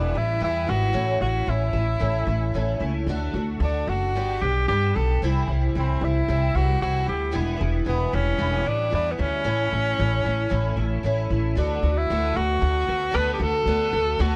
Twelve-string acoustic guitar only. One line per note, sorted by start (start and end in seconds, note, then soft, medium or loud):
0.00 0.15 E2 medium
0.00 0.15 B2 medium
0.00 0.15 E3 medium
0.00 0.15 G3 medium
0.00 0.14 B3 medium
0.00 0.12 E4 medium
0.14 0.38 E3 soft
0.14 0.39 G3 soft
0.14 0.39 B3 soft
0.14 0.41 E4 medium
0.39 0.67 E3 medium
0.39 0.66 G3 medium
0.39 0.65 B3 medium
0.39 0.65 E4 medium
0.66 0.92 E3 soft
0.66 0.93 G3 soft
0.66 0.93 B3 soft
0.66 0.93 E4 medium
0.93 1.21 A2 medium
0.93 1.21 E3 medium
0.93 1.21 A3 medium
0.93 1.20 C#4 medium
0.93 1.18 E4 medium
1.19 1.46 A3 soft
1.19 1.46 C#4 medium
1.19 1.48 E4 medium
1.46 1.74 E3 medium
1.46 1.73 A3 medium
1.46 1.72 C#4 medium
1.46 1.71 E4 medium
1.73 1.99 A3 soft
1.73 2.00 C#4 soft
1.73 2.00 E4 medium
1.99 2.28 A2 medium
1.99 2.28 E3 medium
1.99 2.27 A3 medium
1.99 2.26 C#4 medium
1.99 2.24 E4 medium
2.25 2.54 A3 soft
2.25 2.54 C#4 soft
2.25 2.54 E4 medium
2.54 2.81 E3 medium
2.54 2.81 A3 medium
2.54 2.80 C#4 medium
2.54 2.78 E4 medium
2.79 3.07 A3 soft
2.79 3.08 C#4 soft
2.79 3.07 E4 medium
3.07 3.35 D3 medium
3.07 3.35 A3 medium
3.07 3.35 D4 loud
3.07 3.33 F#4 medium
3.34 3.61 A3 soft
3.34 3.61 D4 medium
3.34 3.61 F#4 medium
3.61 3.88 D3 medium
3.61 3.89 A3 medium
3.61 3.88 D4 medium
3.61 3.86 F#4 medium
3.87 4.16 A3 soft
3.87 4.16 D4 soft
3.87 4.15 F#4 soft
4.15 4.42 G2 medium
4.15 4.42 D3 medium
4.15 4.42 G3 medium
4.15 4.42 B3 medium
4.15 4.41 D4 medium
4.15 4.41 G4 medium
4.42 4.67 G3 soft
4.42 4.67 B3 soft
4.42 4.69 D4 soft
4.42 4.69 G4 soft
4.68 4.95 G3 medium
4.68 4.95 B3 medium
4.68 4.96 D4 medium
4.68 4.94 G4 medium
4.95 5.22 G3 soft
4.95 5.23 B3 soft
4.95 5.23 D4 soft
4.95 5.22 G4 medium
5.22 5.48 C3 medium
5.22 5.49 E3 medium
5.22 5.49 G3 medium
5.22 5.48 C4 medium
5.22 5.47 E4 medium
5.48 5.75 G3 soft
5.48 5.75 C4 soft
5.48 5.75 E4 soft
5.75 6.01 E3 medium
5.75 6.02 G3 medium
5.75 6.02 C4 medium
5.75 6.01 E4 medium
6.02 6.28 G3 soft
6.02 6.29 C4 medium
6.02 6.28 E4 soft
6.28 6.55 C3 medium
6.28 6.55 E3 medium
6.28 6.55 G3 medium
6.28 6.55 C4 medium
6.28 6.54 E4 medium
6.55 6.81 G3 soft
6.55 6.82 C4 medium
6.55 6.81 E4 medium
6.81 7.07 E3 medium
6.81 7.07 G3 medium
6.81 7.06 C4 medium
6.81 7.04 E4 medium
7.06 7.31 G3 soft
7.06 7.32 C4 soft
7.06 7.32 E4 soft
7.31 7.59 E2 medium
7.31 7.59 B2 medium
7.31 7.58 E3 medium
7.31 7.57 G3 medium
7.31 7.56 B3 medium
7.31 7.55 E4 medium
7.57 7.83 E3 soft
7.57 7.84 G3 soft
7.57 7.85 B3 medium
7.57 7.85 E4 medium
7.85 8.12 E3 medium
7.85 8.12 G3 medium
7.85 8.11 B3 medium
7.85 8.11 E4 medium
8.12 8.37 E3 soft
8.12 8.37 G3 soft
8.12 8.38 B3 soft
8.12 8.38 E4 medium
8.38 8.65 E2 medium
8.38 8.65 B2 medium
8.38 8.65 E3 medium
8.38 8.65 G3 medium
8.38 8.65 B3 medium
8.38 8.64 E4 medium
8.65 8.89 E3 soft
8.65 8.89 G3 soft
8.65 8.91 B3 medium
8.65 8.91 E4 medium
8.90 9.18 E3 medium
8.90 9.17 G3 medium
8.90 9.17 B3 medium
8.90 9.16 E4 medium
9.18 9.43 E3 soft
9.18 9.44 G3 soft
9.18 9.44 B3 soft
9.18 9.45 E4 soft
9.44 9.71 A2 medium
9.44 9.71 E3 medium
9.44 9.71 A3 medium
9.44 9.70 C#4 medium
9.44 9.68 E4 medium
9.69 9.96 A3 soft
9.69 9.97 C#4 soft
9.69 9.97 E4 medium
9.97 10.24 E3 medium
9.97 10.24 A3 medium
9.97 10.23 C#4 medium
9.97 10.22 E4 medium
10.23 10.49 A3 soft
10.23 10.49 C#4 medium
10.23 10.50 E4 medium
10.49 10.76 A2 medium
10.49 10.77 E3 medium
10.49 10.77 A3 medium
10.49 10.76 C#4 medium
10.49 10.75 E4 medium
10.76 11.03 A3 soft
10.76 11.04 C#4 medium
10.76 11.03 E4 medium
11.03 11.30 E3 medium
11.03 11.30 A3 medium
11.03 11.30 C#4 medium
11.03 11.29 E4 medium
11.30 11.56 A3 soft
11.30 11.57 C#4 soft
11.30 11.56 E4 medium
11.55 11.82 D3 medium
11.55 11.83 A3 medium
11.55 11.83 B3 medium
11.55 11.82 F#4 medium
11.83 12.09 A3 soft
11.83 12.10 B3 soft
11.83 12.09 F#4 medium
12.10 12.36 D3 medium
12.10 12.35 A3 medium
12.10 12.34 B3 medium
12.10 12.33 F#4 medium
12.35 12.60 A3 soft
12.35 12.61 B3 soft
12.35 12.61 F#4 medium
12.60 12.87 D3 medium
12.60 12.87 A3 medium
12.60 12.86 B3 medium
12.60 12.85 F#4 medium
12.86 13.11 A3 soft
12.86 13.12 B3 soft
12.86 13.12 F#4 medium
13.11 13.39 D3 medium
13.11 13.40 A3 medium
13.11 13.38 B3 loud
13.11 13.37 F#4 loud
13.39 13.66 A3 soft
13.39 13.67 B3 soft
13.39 13.66 F#4 medium
13.67 13.93 D3 medium
13.67 13.93 A3 medium
13.67 13.93 B3 medium
13.67 13.92 F#4 medium
13.94 14.19 A3 soft
13.94 14.19 B3 soft
13.94 14.19 F#4 medium
14.19 14.36 D3 medium
14.19 14.36 A3 medium
14.19 14.36 B3 medium
14.19 14.36 F#4 medium